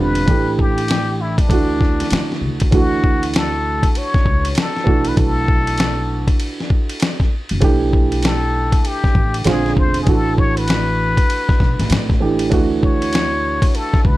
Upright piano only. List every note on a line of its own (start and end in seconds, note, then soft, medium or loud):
0.00 0.27 D3 medium
0.00 0.27 G3 medium
0.00 0.28 C4 medium
0.00 0.28 F4 medium
0.26 1.47 E3 medium
0.26 1.48 A3 medium
0.26 1.48 D4 medium
0.30 1.49 G4 medium
1.48 2.69 E3 medium
1.48 2.70 A3 medium
1.48 2.71 D4 medium
1.48 2.71 F#4 medium
2.71 4.82 E3 medium
2.71 4.83 A3 medium
2.71 4.83 D4 medium
2.71 4.84 F#4 medium
4.84 7.26 E3 medium
4.84 7.27 A3 medium
4.84 7.28 D4 medium
4.84 7.28 F#4 medium
7.60 9.41 E3 medium
7.60 9.42 A3 medium
7.60 9.43 D4 medium
7.60 9.43 G4 medium
9.45 10.07 D3 medium
9.45 10.07 G#3 medium
9.45 10.07 C4 medium
9.45 10.08 F4 medium
10.05 12.16 E3 medium
10.05 12.17 A3 medium
10.05 12.18 D4 medium
10.05 12.18 F#4 medium
12.20 12.48 E3 medium
12.20 12.49 A3 medium
12.20 12.51 D4 medium
12.20 12.52 G4 medium
12.50 14.17 E3 medium
12.50 14.17 A3 medium
12.50 14.17 D4 medium
12.50 14.17 F#4 medium